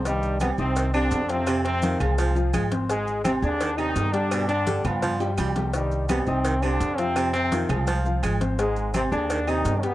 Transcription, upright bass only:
X:1
M:4/4
L:1/8
Q:1/4=169
K:Cm
V:1 name="Upright bass" clef=bass
C,,3 C,,3 F,,2- | F,,3 C,,3 A,,,2- | A,,,3 E,,3 G,,2- | G,,3 G,,3 C,,2- |
C,,3 C,,3 F,,2- | F,,3 C,,3 A,,,2- | A,,,3 E,,3 G,,2 |]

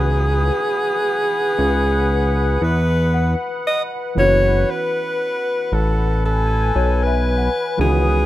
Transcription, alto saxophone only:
X:1
M:4/4
L:1/16
Q:1/4=58
K:F#dor
V:1 name="Alto saxophone"
G8- G2 B3 z d2 | c2 B4 A2 A3 B3 G2 |]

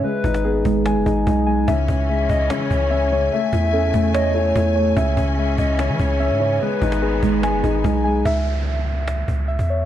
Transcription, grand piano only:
X:1
M:4/4
L:1/8
Q:1/4=146
K:C#m
V:1 name="Grand piano"
G, D B,2 G, D D G, | C, C G,2 C, C C C, | A, E C2 A, E E A, | C, C G,2 C, C C C, |
G, D B,2 G, D D G, | z8 |]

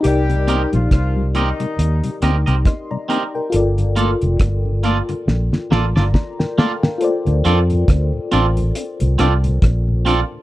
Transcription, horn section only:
X:1
M:4/4
L:1/16
Q:"Swing 16ths" 1/4=69
K:Dphr
V:1 name="Horn section"
[G,G]3 [F,F] [F,F]2 [E,E]4 z6 | z16 | z16 |]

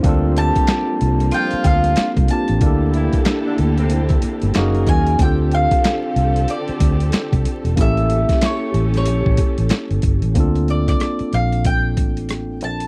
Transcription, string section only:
X:1
M:4/4
L:1/8
Q:"Swing 16ths" 1/4=93
K:Gdor
V:1 name="String section"
[F,G,B,]8 | [D,B,EGA]6 [^F,^D^G^A]2 | [D,CGA]8 | [^CGA]8 |
z8 |]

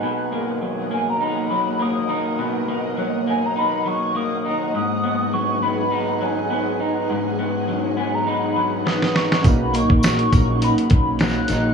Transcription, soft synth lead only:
X:1
M:4/4
L:1/16
Q:"Swing 16ths" 1/4=102
K:B
V:1 name="Soft synth lead"
z6 g a b4 d'3 z | z6 g a b2 c'2 d'3 z | d'4 c'2 b4 g4 z2 | z6 g a b4 d'2 c'2 |
b2 c'6 b4 f'4 |]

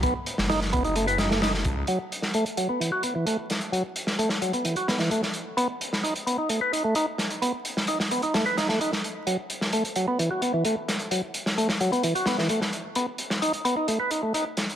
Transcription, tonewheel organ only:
X:1
M:4/4
L:1/16
Q:1/4=130
K:F#dor
V:1 name="Tonewheel organ"
B, z3 D z B, D A, B D A, D z3 | F, z3 A, z F, B, E, F B, E, A, z3 | F, z3 A, z F, B, E, F B, E, A, z3 | B, z3 D z B, D A, B D A, D z3 |
B, z3 D z B, D A, B D A, D z3 | F, z3 A, z F, B, E, F B, E, A, z3 | F, z3 A, z F, B, E, F B, E, A, z3 | B, z3 D z B, D A, B D A, D z3 |]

